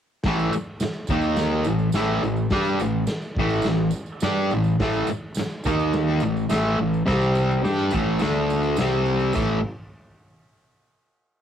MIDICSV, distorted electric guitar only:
0, 0, Header, 1, 3, 480
1, 0, Start_track
1, 0, Tempo, 569260
1, 203, Time_signature, 4, 2, 24, 8
1, 9627, End_track
2, 0, Start_track
2, 0, Title_t, "Distorted electric guitar"
2, 0, Program_c, 0, 30
2, 214, Note_on_c, 0, 45, 89
2, 225, Note_on_c, 0, 52, 97
2, 230, Note_on_c, 0, 57, 102
2, 430, Note_off_c, 0, 45, 0
2, 446, Note_off_c, 0, 52, 0
2, 448, Note_off_c, 0, 57, 0
2, 927, Note_on_c, 0, 51, 86
2, 939, Note_on_c, 0, 58, 86
2, 940, Note_on_c, 0, 63, 94
2, 1395, Note_off_c, 0, 51, 0
2, 1401, Note_off_c, 0, 58, 0
2, 1401, Note_off_c, 0, 63, 0
2, 1418, Note_on_c, 0, 45, 73
2, 1418, Note_on_c, 0, 52, 81
2, 1600, Note_off_c, 0, 45, 0
2, 1600, Note_off_c, 0, 52, 0
2, 1646, Note_on_c, 0, 45, 91
2, 1651, Note_on_c, 0, 52, 85
2, 1655, Note_on_c, 0, 57, 97
2, 1874, Note_off_c, 0, 45, 0
2, 1877, Note_off_c, 0, 52, 0
2, 1879, Note_off_c, 0, 57, 0
2, 1885, Note_on_c, 0, 45, 66
2, 1891, Note_on_c, 0, 52, 69
2, 2073, Note_off_c, 0, 45, 0
2, 2076, Note_off_c, 0, 52, 0
2, 2122, Note_on_c, 0, 55, 101
2, 2133, Note_on_c, 0, 62, 105
2, 2140, Note_on_c, 0, 67, 99
2, 2353, Note_off_c, 0, 55, 0
2, 2358, Note_off_c, 0, 62, 0
2, 2362, Note_off_c, 0, 67, 0
2, 2378, Note_on_c, 0, 45, 69
2, 2379, Note_on_c, 0, 52, 77
2, 2560, Note_off_c, 0, 45, 0
2, 2560, Note_off_c, 0, 52, 0
2, 2857, Note_on_c, 0, 45, 81
2, 2869, Note_on_c, 0, 52, 87
2, 2875, Note_on_c, 0, 57, 100
2, 3081, Note_off_c, 0, 45, 0
2, 3087, Note_off_c, 0, 52, 0
2, 3090, Note_off_c, 0, 57, 0
2, 3103, Note_on_c, 0, 45, 60
2, 3111, Note_on_c, 0, 52, 66
2, 3284, Note_off_c, 0, 45, 0
2, 3287, Note_off_c, 0, 52, 0
2, 3566, Note_on_c, 0, 55, 95
2, 3574, Note_on_c, 0, 62, 92
2, 3584, Note_on_c, 0, 67, 98
2, 3796, Note_off_c, 0, 55, 0
2, 3801, Note_off_c, 0, 62, 0
2, 3806, Note_off_c, 0, 67, 0
2, 3830, Note_on_c, 0, 45, 62
2, 3830, Note_on_c, 0, 52, 80
2, 4008, Note_off_c, 0, 45, 0
2, 4008, Note_off_c, 0, 52, 0
2, 4051, Note_on_c, 0, 45, 90
2, 4064, Note_on_c, 0, 57, 113
2, 4065, Note_on_c, 0, 52, 93
2, 4280, Note_off_c, 0, 45, 0
2, 4287, Note_off_c, 0, 52, 0
2, 4287, Note_off_c, 0, 57, 0
2, 4772, Note_on_c, 0, 51, 98
2, 4781, Note_on_c, 0, 58, 89
2, 4788, Note_on_c, 0, 63, 95
2, 5243, Note_off_c, 0, 51, 0
2, 5248, Note_off_c, 0, 58, 0
2, 5251, Note_off_c, 0, 63, 0
2, 5254, Note_on_c, 0, 45, 77
2, 5258, Note_on_c, 0, 52, 79
2, 5443, Note_off_c, 0, 45, 0
2, 5445, Note_off_c, 0, 52, 0
2, 5478, Note_on_c, 0, 45, 91
2, 5486, Note_on_c, 0, 52, 83
2, 5489, Note_on_c, 0, 57, 93
2, 5716, Note_off_c, 0, 45, 0
2, 5719, Note_off_c, 0, 52, 0
2, 5722, Note_off_c, 0, 57, 0
2, 5728, Note_on_c, 0, 45, 65
2, 5729, Note_on_c, 0, 52, 70
2, 5921, Note_off_c, 0, 45, 0
2, 5922, Note_off_c, 0, 52, 0
2, 5950, Note_on_c, 0, 48, 90
2, 5958, Note_on_c, 0, 55, 90
2, 5965, Note_on_c, 0, 60, 109
2, 6419, Note_off_c, 0, 55, 0
2, 6429, Note_on_c, 0, 55, 90
2, 6434, Note_off_c, 0, 48, 0
2, 6441, Note_off_c, 0, 60, 0
2, 6446, Note_on_c, 0, 62, 94
2, 6450, Note_on_c, 0, 67, 101
2, 6673, Note_off_c, 0, 55, 0
2, 6680, Note_on_c, 0, 45, 84
2, 6682, Note_off_c, 0, 62, 0
2, 6684, Note_off_c, 0, 67, 0
2, 6688, Note_on_c, 0, 52, 89
2, 6696, Note_on_c, 0, 57, 108
2, 6917, Note_off_c, 0, 45, 0
2, 6919, Note_off_c, 0, 57, 0
2, 6920, Note_on_c, 0, 50, 100
2, 6923, Note_off_c, 0, 52, 0
2, 6929, Note_on_c, 0, 57, 91
2, 6935, Note_on_c, 0, 62, 84
2, 7399, Note_off_c, 0, 50, 0
2, 7404, Note_off_c, 0, 57, 0
2, 7407, Note_off_c, 0, 62, 0
2, 7408, Note_on_c, 0, 48, 89
2, 7416, Note_on_c, 0, 55, 87
2, 7426, Note_on_c, 0, 60, 93
2, 7879, Note_off_c, 0, 48, 0
2, 7882, Note_on_c, 0, 45, 92
2, 7883, Note_off_c, 0, 55, 0
2, 7887, Note_on_c, 0, 52, 101
2, 7890, Note_off_c, 0, 60, 0
2, 7894, Note_on_c, 0, 57, 109
2, 8079, Note_off_c, 0, 45, 0
2, 8081, Note_off_c, 0, 52, 0
2, 8085, Note_off_c, 0, 57, 0
2, 9627, End_track
3, 0, Start_track
3, 0, Title_t, "Muted distorted electric guitar strokes"
3, 440, Note_on_c, 9, 29, 63
3, 525, Note_off_c, 9, 29, 0
3, 697, Note_on_c, 9, 29, 60
3, 781, Note_off_c, 9, 29, 0
3, 4309, Note_on_c, 9, 29, 61
3, 4393, Note_off_c, 9, 29, 0
3, 4554, Note_on_c, 9, 29, 62
3, 4639, Note_off_c, 9, 29, 0
3, 9627, End_track
0, 0, End_of_file